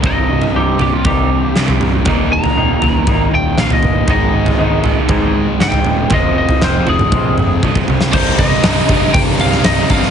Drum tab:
CC |----------------|----------------|----------------|----------------|
HH |----------------|----------------|----------------|----------------|
SD |------------o---|------------o---|------------o---|----o----------o|
T2 |----------------|----------------|----------------|-------o--o-----|
FT |o--o--o-o----oo-|o--o--o-o----oo-|o--o--o-o----oo-|o--o--o-------o-|
BD |o-------o-------|o-------o-------|o-------o-------|o-------o---oo--|

CC |x---------------|
HH |--o-o-o-o-o-o-o-|
SD |----o------oo--o|
T2 |----------------|
FT |----------------|
BD |o-o---o-o-----o-|